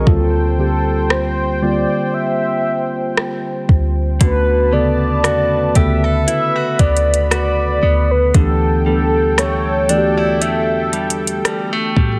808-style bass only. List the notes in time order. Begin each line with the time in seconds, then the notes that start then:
0.07 D2
3.69 D2
4.21 D2
5.24 E2
5.76 D2
6.80 D2
7.83 D2
8.35 D2
10.42 E2
11.97 A2